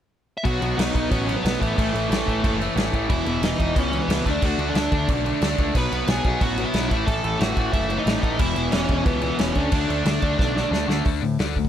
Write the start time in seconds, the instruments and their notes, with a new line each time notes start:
0.37 lead electric guitar E5
0.44 picked electric bass B1, overdriven electric guitar B2 F#3 B3, lead electric guitar F#4 F#5, kick, crash
0.61 picked electric bass B1, overdriven electric guitar B2 F#3 B3, crash
0.77 picked electric bass B1, overdriven electric guitar B2 F#3 B3, lead electric guitar D#4 D#5, snare, crash
0.93 picked electric bass B1, overdriven electric guitar B2 F#3 B3, kick, crash
1.10 picked electric bass A1, overdriven electric guitar B2 F#3 B3, lead electric guitar C#4 C#5, kick, crash
1.26 overdriven electric guitar B2 F#3 B3, crash
1.36 lead electric guitar B3 B4
1.44 picked electric bass B1, overdriven electric guitar B2 F#3 B3, snare, crash
1.60 picked electric bass A1, overdriven electric guitar A2 E3 A3, lead electric guitar B3 B4, kick, crash
1.77 picked electric bass A1, overdriven electric guitar A2 E3 A3, lead electric guitar A3 A4, kick, crash
1.93 picked electric bass A1, overdriven electric guitar A2 E3 A3, lead electric guitar A3 A4, crash
2.10 picked electric bass A1, overdriven electric guitar A2 E3 A3, snare, crash
2.27 picked electric bass A1, overdriven electric guitar A2 E3 A3, kick, crash
2.42 picked electric bass F#1, overdriven electric guitar A2 E3 A3, kick, crash
2.60 overdriven electric guitar A2 E3 A3, crash
2.76 picked electric bass A1, overdriven electric guitar A2 E3 A3, snare, crash
2.93 picked electric bass A1, overdriven electric guitar A2 E3 A3, kick, crash
3.09 picked electric bass E1, overdriven electric guitar E2 B2 E3, lead electric guitar E4 E5, kick, crash
3.25 picked electric bass E1, overdriven electric guitar E2 B2 E3, crash
3.40 picked electric bass E1, overdriven electric guitar E2, lead electric guitar D#4 D#5, snare, crash
3.44 overdriven electric guitar B2 E3
3.59 picked electric bass E1, overdriven electric guitar E2 B2 E3, kick, crash
3.75 picked electric bass C#2, overdriven electric guitar E2 B2 E3, lead electric guitar C#4, kick, crash
3.80 lead electric guitar C#5
3.93 overdriven electric guitar E2 B2 E3, crash
4.01 lead electric guitar B3 B4
4.08 picked electric bass C#2, overdriven electric guitar E2 B2 E3, snare, crash
4.25 picked electric bass D2, overdriven electric guitar D3 A3 D4, lead electric guitar D4, kick, crash
4.31 lead electric guitar D5
4.42 picked electric bass D2, overdriven electric guitar D3 A3 D4, lead electric guitar F#4, kick, crash
4.46 lead electric guitar F#5
4.58 picked electric bass D2, overdriven electric guitar D3 A3 D4, crash
4.69 lead electric guitar D4 D5
4.75 picked electric bass D2, overdriven electric guitar D3 A3 D4, lead electric guitar D4 D5, snare, crash
4.91 picked electric bass D2, overdriven electric guitar D3 A3 D4, kick, crash
5.08 picked electric bass B1, overdriven electric guitar D3 A3 D4, kick, crash
5.24 overdriven electric guitar D3 A3 D4, crash
5.41 picked electric bass D2, overdriven electric guitar D3 A3 D4, snare, crash
5.57 picked electric bass C#2, overdriven electric guitar D3 A3 D4, kick, crash
5.74 picked electric bass B1, overdriven electric guitar B2 F#3 B3, lead electric guitar B4 B5, kick, crash
5.91 picked electric bass B1, overdriven electric guitar B2 F#3 B3, crash
6.07 picked electric bass B1, overdriven electric guitar B2 F#3 B3, lead electric guitar G#4 G#5, snare, crash
6.24 picked electric bass B1, overdriven electric guitar B2 F#3 B3, kick, crash
6.41 picked electric bass A1, overdriven electric guitar B2 F#3 B3, lead electric guitar F#4 F#5, kick, crash
6.57 overdriven electric guitar B2 F#3 B3, crash
6.64 lead electric guitar E4 E5
6.74 picked electric bass B1, overdriven electric guitar B2 F#3 B3, snare, crash
6.89 picked electric bass A1, overdriven electric guitar A2 E3 A3, lead electric guitar E4 E5, kick, crash
7.06 picked electric bass A1, overdriven electric guitar A2 E3 A3, lead electric guitar A4 A5, kick, crash
7.23 picked electric bass A1, overdriven electric guitar A2 E3 A3, crash
7.39 picked electric bass A1, overdriven electric guitar A2 E3 A3, lead electric guitar F#4 F#5, snare, crash
7.56 picked electric bass A1, overdriven electric guitar A2 E3 A3, kick, crash
7.73 picked electric bass F#1, overdriven electric guitar A2 E3 A3, lead electric guitar E4 E5, kick, crash
7.90 overdriven electric guitar A2 E3 A3, crash
7.98 lead electric guitar D#4 D#5
8.06 picked electric bass A1, overdriven electric guitar A2 E3 A3, snare, crash
8.22 picked electric bass A1, overdriven electric guitar A2 E3 A3, lead electric guitar D#4 D#5, kick, crash
8.38 picked electric bass E1, overdriven electric guitar E2 B2 E3, lead electric guitar E4 E5, kick, crash
8.56 picked electric bass E1, overdriven electric guitar E2 B2 E3, crash
8.72 picked electric bass E1, overdriven electric guitar E2 B2 E3, lead electric guitar C#4 C#5, snare, crash
8.88 picked electric bass E1, overdriven electric guitar E2 B2 E3, kick, crash
9.05 picked electric bass C#2, overdriven electric guitar E2 B2 E3, lead electric guitar B3 B4, kick, crash
9.21 overdriven electric guitar E2 B2 E3, crash
9.39 picked electric bass E1, overdriven electric guitar E2 B2 E3, lead electric guitar C#4 C#5, snare, crash
9.53 picked electric bass D2, overdriven electric guitar D3 A3 D4, kick, crash
9.57 overdriven electric guitar A3 D4
9.72 picked electric bass D2, overdriven electric guitar D3 A3 D4, lead electric guitar D4 D5, kick, crash
9.89 picked electric bass D2, overdriven electric guitar D3 A3 D4, crash
10.05 picked electric bass D2, overdriven electric guitar D3 A3 D4, snare, crash
10.22 picked electric bass D2, overdriven electric guitar D3 A3 D4, kick, crash
10.38 picked electric bass B1, overdriven electric guitar D3 A3 D4, kick, snare
10.55 overdriven electric guitar D3 A3 D4, snare
10.71 picked electric bass D2, overdriven electric guitar D3 A3 D4, snare
10.87 picked electric bass D2, overdriven electric guitar D3 A3 D4, snare
11.04 picked electric bass D2, overdriven electric guitar D3 A3 D4, kick, open hi-hat
11.21 picked electric bass A2, overdriven electric guitar D3 A3
11.39 picked electric bass D2, overdriven electric guitar D3 A3 D4, snare, open hi-hat
11.56 overdriven electric guitar D3 A3, kick
11.65 kick